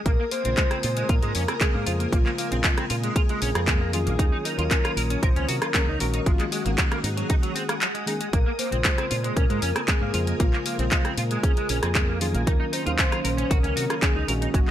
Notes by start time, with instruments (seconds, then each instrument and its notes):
Already playing: string machine D#6
0.06 fingered electric bass A#1, clean electric guitar A#3, soft synth lead A#4, string machine A#4 G#5, kick, closed hi-hat
0.20 clean electric guitar A#3
0.31 clean electric guitar A#3, soft synth lead C5, open hi-hat
0.44 fingered electric bass A#1, tine electric piano C#3 G#3 A#3 C4 F4, clean electric guitar C4, closed hi-hat
0.57 clean electric guitar G#3, kick, clap, closed hi-hat
0.71 clean electric guitar C4, cross-stick, closed hi-hat
0.83 fingered electric bass A#2, clean electric guitar F4, open hi-hat
0.97 clean electric guitar G#3, closed hi-hat
1.09 fingered electric bass A#2, clean electric guitar F4, soft synth lead A#4, kick, closed hi-hat
1.22 fingered electric bass G#2, clean electric guitar G#3, closed hi-hat
1.35 fingered electric bass F2, clean electric guitar C#4, open hi-hat
1.48 clean electric guitar C4, cross-stick, closed hi-hat
1.60 tine electric piano C#3 G#3 A#3 C4 A#4, clean electric guitar G#3, soft synth lead G#4, kick, clap, closed hi-hat
1.74 fingered electric bass G#2, clean electric guitar A#3
1.85 fingered electric bass F2, tine electric piano C#3 G#3 A#3 F4 C5, clean electric guitar F4, open hi-hat
2.00 clean electric guitar A#3, closed hi-hat
2.12 fingered electric bass A#1, clean electric guitar A#3, soft synth lead F4, kick, closed hi-hat
2.26 clean electric guitar A#3, clap
2.38 clean electric guitar A#3, soft synth lead F4, open hi-hat
2.51 fingered electric bass A#1, tine electric piano C#3 G#3 A#3 C4 F4, clean electric guitar C4, closed hi-hat
2.64 clean electric guitar G#3, kick, clap, closed hi-hat
2.78 clean electric guitar C4, cross-stick, closed hi-hat
2.90 fingered electric bass A#2, clean electric guitar F4, open hi-hat
3.04 clean electric guitar G#3, closed hi-hat
3.16 clean electric guitar F4, soft synth lead G#4, kick, closed hi-hat
3.29 clean electric guitar G#3, closed hi-hat
3.42 fingered electric bass A#1, clean electric guitar C#4, open hi-hat
3.55 fingered electric bass F2, clean electric guitar C4, cross-stick, closed hi-hat
3.67 tine electric piano C#3 G#3 A#3 C4 A#4, clean electric guitar G#3, kick, clap, closed hi-hat
3.81 clean electric guitar A#3
3.92 tine electric piano D#3 F#3 A#3 C#4 F4, clean electric guitar F4, soft synth lead G#4, open hi-hat
4.06 fingered electric bass A#1, clean electric guitar A#3, closed hi-hat
4.19 fingered electric bass D#2, clean electric guitar D#4, string machine C#5 D#6, kick, closed hi-hat
4.32 clean electric guitar D#4
4.45 clean electric guitar D#4, soft synth lead A#4, open hi-hat
4.58 fingered electric bass D#2, tine electric piano D#3 F#3 A#3 C#4 F4, clean electric guitar F4, closed hi-hat
4.71 clean electric guitar C#4, kick, clap, closed hi-hat
4.84 clean electric guitar F4, cross-stick, closed hi-hat
4.96 fingered electric bass A#1, clean electric guitar A#4, open hi-hat
5.10 clean electric guitar C#4, closed hi-hat
5.23 fingered electric bass A#1, clean electric guitar A#4, soft synth lead C5, kick, closed hi-hat
5.36 fingered electric bass C#2, clean electric guitar C#4, closed hi-hat
5.48 fingered electric bass C3, clean electric guitar F#4, soft synth lead A#4, open hi-hat
5.62 clean electric guitar F4, cross-stick, closed hi-hat
5.74 tine electric piano D#3 F#3 A#3 C#4 G#4, clean electric guitar C#4, kick, clap, closed hi-hat
5.88 fingered electric bass C#2, clean electric guitar D#4
5.99 fingered electric bass A#1, tine electric piano D#3 G#3 A#3 C#4 F#4, clean electric guitar A#4, soft synth lead A#4, open hi-hat
6.14 clean electric guitar D#4, closed hi-hat
6.26 fingered electric bass G#1, clean electric guitar G#3, soft synth lead F4, string machine G#4 F#5 D#6, kick, closed hi-hat
6.39 clean electric guitar G#3, clap, closed hi-hat
6.52 clean electric guitar G#3, soft synth lead F#4, open hi-hat
6.65 fingered electric bass G#1, tine electric piano D#3 G#3 A#3 C#4 F#4, clean electric guitar A#3, closed hi-hat
6.78 clean electric guitar F#3, kick, clap, closed hi-hat
6.91 clean electric guitar A#3, cross-stick, closed hi-hat
7.04 fingered electric bass G#2, clean electric guitar D#4, open hi-hat
7.17 clean electric guitar F#3, closed hi-hat
7.29 clean electric guitar D#4, kick, closed hi-hat
7.43 clean electric guitar F#3, closed hi-hat
7.55 clean electric guitar C4, open hi-hat
7.69 clean electric guitar A#3, cross-stick, closed hi-hat
7.81 clean electric guitar F#3, clap, closed hi-hat
7.94 clean electric guitar G#3, closed hi-hat
8.06 tine electric piano D#3 G#3 A#3 C#4 G#4, clean electric guitar D#4, soft synth lead G#4, open hi-hat
8.21 clean electric guitar G#3, closed hi-hat
8.33 fingered electric bass A#1, clean electric guitar A#3, soft synth lead A#4, string machine A#4 G#5, kick, closed hi-hat
8.46 clean electric guitar A#3
8.59 clean electric guitar A#3, soft synth lead C5, open hi-hat
8.71 fingered electric bass A#1, tine electric piano C#3 G#3 A#3 F4 C5, clean electric guitar C4, closed hi-hat
8.84 clean electric guitar G#3, kick, clap, closed hi-hat
8.98 clean electric guitar C4, cross-stick, closed hi-hat
9.10 fingered electric bass A#2, clean electric guitar F4, open hi-hat
9.24 clean electric guitar G#3, closed hi-hat
9.36 fingered electric bass A#2, clean electric guitar C#4, soft synth lead A#4, kick, closed hi-hat
9.50 fingered electric bass G#2, clean electric guitar G#3, closed hi-hat
9.62 fingered electric bass F2, clean electric guitar C#4, open hi-hat
9.75 clean electric guitar C4, cross-stick, closed hi-hat
9.87 tine electric piano C#3 G#3 A#3 C4 A#4, clean electric guitar G#3, soft synth lead G#4, kick, clap, closed hi-hat
10.01 fingered electric bass G#2, clean electric guitar A#3
10.12 fingered electric bass F2, tine electric piano C#3 G#3 A#3 F4 C5, clean electric guitar F4, open hi-hat
10.27 clean electric guitar A#3, closed hi-hat
10.40 fingered electric bass A#1, clean electric guitar A#3, soft synth lead F4, kick, closed hi-hat
10.53 clean electric guitar A#3, clap
10.66 clean electric guitar A#3, soft synth lead F4, open hi-hat
10.78 fingered electric bass A#1, tine electric piano C#3 G#3 A#3 F4 C5, clean electric guitar C4, closed hi-hat
10.91 clean electric guitar G#3, kick, clap, closed hi-hat
11.05 clean electric guitar C4, cross-stick, closed hi-hat
11.17 fingered electric bass A#2, clean electric guitar F4, open hi-hat
11.31 clean electric guitar G#3, closed hi-hat
11.43 clean electric guitar C#4, soft synth lead G#4, kick, closed hi-hat
11.57 clean electric guitar G#3, closed hi-hat
11.69 fingered electric bass A#1, clean electric guitar C#4, open hi-hat
11.83 fingered electric bass F2, clean electric guitar C4, cross-stick, closed hi-hat
11.95 tine electric piano C#3 G#3 A#3 C4 A#4, clean electric guitar G#3, kick, clap, closed hi-hat
12.09 clean electric guitar A#3
12.20 tine electric piano D#3 F#3 A#3 C#4 F4, clean electric guitar F4, soft synth lead G#4, open hi-hat
12.34 fingered electric bass A#1, clean electric guitar A#3, closed hi-hat
12.47 fingered electric bass D#2, string machine C#4 D#6, clean electric guitar D#4, soft synth lead A#4, kick, closed hi-hat
12.60 clean electric guitar D#4
12.73 clean electric guitar D#4, soft synth lead C5, open hi-hat
12.85 fingered electric bass D#2, tine electric piano D#3 F#3 A#3 C#4 F5, clean electric guitar F4, closed hi-hat
12.98 clean electric guitar C#4, kick, clap, closed hi-hat
13.12 clean electric guitar F4, cross-stick, closed hi-hat
13.24 fingered electric bass A#1, clean electric guitar A#4, open hi-hat
13.37 clean electric guitar C#4, closed hi-hat
13.50 fingered electric bass A#1, clean electric guitar F#4, soft synth lead A#4, kick, closed hi-hat
13.63 fingered electric bass C#2, clean electric guitar C#4, closed hi-hat
13.76 fingered electric bass C3, clean electric guitar F#4, open hi-hat
13.90 clean electric guitar F4, cross-stick, closed hi-hat
14.02 tine electric piano D#3 F#3 A#3 C#4 G#4, clean electric guitar C#4, soft synth lead G#4, kick, clap, closed hi-hat
14.15 fingered electric bass C#2, clean electric guitar D#4
14.27 fingered electric bass A#1, tine electric piano D#3 G#3 A#3 C#4 F#4, clean electric guitar A#4, open hi-hat
14.42 clean electric guitar D#4, closed hi-hat
14.54 fingered electric bass G#1, clean electric guitar G#3, soft synth lead F#4, string machine G#4 F#5 D#6, kick, closed hi-hat
14.68 clean electric guitar G#3, clap